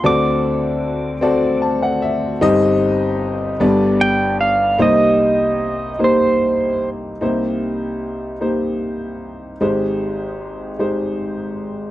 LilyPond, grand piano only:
<<
  \new Staff \with { instrumentName = "Grand piano" } { \time 6/8 \key c \minor \tempo 4. = 50 << { r2 a''16 fis''16 e''8 | r2. | r2. | r2. |
r2. | } \\ { <c' fis' a' d''>4. <c' fis' a' d''>4. | <c' ees' g' ees''>4. <b d' g' d''>4. | <bes ees' g' c''>4. <bes ees' g' c''>4. | <bes ees' g' c''>4. <bes ees' g' c''>4. |
<aes ees' g' c''>4. <aes ees' g' c''>4. | } >> }
  \new Staff \with { instrumentName = "Grand piano" } { \clef bass \time 6/8 \key c \minor <d, d>2. | <g,, g,>4. <g,, g,>4. | <c, c>2. | <c, c>2. |
<aes,, aes,>2. | }
>>